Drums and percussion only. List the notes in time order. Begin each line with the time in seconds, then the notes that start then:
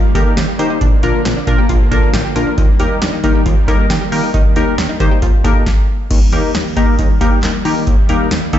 0.15 kick, closed hi-hat
0.37 snare, closed hi-hat
0.59 closed hi-hat
0.81 kick, closed hi-hat
1.03 closed hi-hat
1.25 snare, closed hi-hat
1.47 kick, closed hi-hat
1.69 kick, closed hi-hat
1.91 kick, closed hi-hat
2.14 snare, closed hi-hat
2.36 closed hi-hat
2.58 kick, closed hi-hat
2.80 closed hi-hat
3.02 snare, closed hi-hat
3.24 kick, closed hi-hat
3.46 kick, closed hi-hat
3.68 kick, closed hi-hat
3.90 snare, closed hi-hat
4.12 open hi-hat
4.34 kick, closed hi-hat
4.56 closed hi-hat
4.78 snare, closed hi-hat
5.00 kick, closed hi-hat
5.22 kick, closed hi-hat
5.44 kick, closed hi-hat
5.66 kick, snare
6.11 kick, closed hi-hat, crash
6.32 closed hi-hat
6.55 snare, closed hi-hat
6.77 kick, closed hi-hat
6.99 kick, closed hi-hat
7.21 kick, closed hi-hat
7.43 snare, clap, closed hi-hat
7.65 open hi-hat
7.87 kick, closed hi-hat
8.09 closed hi-hat
8.31 snare, closed hi-hat
8.53 kick, closed hi-hat